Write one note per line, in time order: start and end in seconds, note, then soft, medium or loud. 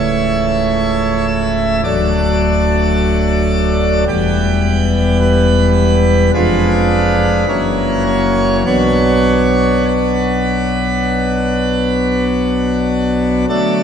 0.00 1.81 C#1 medium
0.00 1.81 C#2 medium
0.00 1.81 E3 soft
0.00 1.81 A3 soft
0.00 1.81 E4 soft
0.00 1.25 C#5 medium
1.27 1.76 E5 medium
1.84 4.04 D1 medium
1.84 4.04 D2 medium
1.84 4.04 F#3 soft
1.84 4.05 A3 soft
1.84 4.04 D4 soft
1.84 4.04 D5 loud
4.08 6.30 E1 medium
4.08 6.30 E2 medium
4.08 6.30 G3 soft
4.08 6.31 B3 medium
4.08 5.17 G4 loud
5.21 6.31 B4 loud
6.34 7.45 F1 medium
6.34 7.45 F2 medium
6.34 7.45 F3 medium
6.34 7.45 G#3 medium
6.34 7.45 D4 medium
6.34 8.03 B4 loud
7.48 8.63 F#1 medium
7.48 8.63 F#2 medium
7.48 8.63 E3 medium
7.48 8.63 A#3 soft
7.48 8.63 C#4 medium
8.06 8.57 C#5 loud
8.65 13.45 B1 medium
8.65 13.45 B2 medium
8.65 13.45 F#3 soft
8.65 13.45 B3 soft
8.65 13.45 D4 soft
8.65 9.85 C#5 loud
9.88 12.24 B4 medium
13.49 13.83 D3 medium
13.49 13.83 F#3 soft
13.49 13.83 A3 soft
13.49 13.83 D4 soft
13.49 13.83 A4 medium